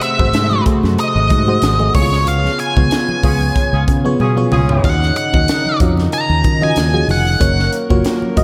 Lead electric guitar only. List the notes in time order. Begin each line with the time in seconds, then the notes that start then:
0.03 E5
1.00 D#5
1.95 C#5
2.28 F5
2.60 G#5
4.85 F#5
5.17 F#5
6.13 A#5
6.63 G#5
7.11 F#5